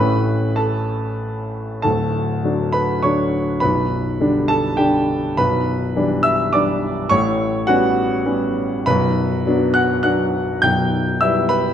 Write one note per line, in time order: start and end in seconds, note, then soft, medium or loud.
0.00 1.79 A1 medium
0.00 1.77 A2 medium
0.00 1.77 E3 soft
0.00 1.78 A3 soft
0.00 1.79 C#4 soft
0.00 0.53 B4 medium
0.00 0.56 B5 medium
0.56 1.49 A4 soft
0.56 1.53 A5 medium
1.82 3.58 D1 medium
1.82 3.58 D2 medium
1.82 2.69 A4 medium
1.82 2.73 A5 medium
2.44 2.99 D3 soft
2.44 2.99 F#3 soft
2.44 3.00 D4 soft
2.73 3.01 B4 medium
2.73 3.02 B5 medium
3.03 3.58 D3 soft
3.03 3.59 F#3 soft
3.03 3.59 D4 soft
3.03 3.58 C#5 medium
3.03 3.61 C#6 medium
3.60 5.34 B0 soft
3.60 5.34 B1 medium
3.60 4.46 B4 medium
3.60 4.49 B5 medium
4.20 4.75 D3 soft
4.20 4.75 G3 soft
4.20 4.75 D4 soft
4.48 4.77 A4 medium
4.48 4.78 A5 medium
4.77 5.33 D3 soft
4.77 5.33 G3 soft
4.77 5.34 D4 soft
4.77 5.33 G4 medium
4.77 5.37 G5 medium
5.37 7.07 B0 medium
5.37 7.07 B1 medium
5.37 6.21 B4 medium
5.37 6.25 B5 medium
5.96 6.50 E3 medium
5.96 6.50 G3 soft
5.96 6.50 D4 medium
6.23 6.51 E5 medium
6.23 6.53 E6 medium
6.53 7.07 E3 soft
6.53 7.07 G3 soft
6.53 7.08 D4 medium
6.53 7.07 D5 medium
6.53 7.10 D6 medium
7.09 8.83 A1 medium
7.09 8.83 A2 medium
7.09 7.64 C#5 medium
7.09 7.67 C#6 medium
7.67 8.22 G3 medium
7.67 8.22 B3 medium
7.67 8.22 C#4 medium
7.67 8.83 F#4 medium
7.67 8.87 F#5 medium
8.26 8.83 G3 soft
8.26 8.83 B3 soft
8.26 8.83 C#4 medium
8.86 10.59 B0 medium
8.86 10.59 B1 medium
8.86 9.71 B4 medium
8.86 9.75 B5 medium
9.47 10.01 F#3 medium
9.47 10.01 B3 medium
9.47 10.01 D4 medium
9.74 10.02 F#5 medium
9.74 10.01 F#6 medium
10.03 10.59 F#3 soft
10.03 10.59 B3 soft
10.03 10.60 D4 soft
10.03 10.59 F#5 medium
10.03 10.63 F#6 medium
10.62 11.74 B0 medium
10.62 11.74 B1 medium
10.62 11.18 G5 medium
10.62 11.21 G6 medium
11.21 11.74 G3 soft
11.21 11.74 B3 soft
11.21 11.74 E4 medium
11.21 11.48 E5 medium
11.21 11.50 E6 medium
11.49 11.74 B4 medium
11.49 11.74 B5 medium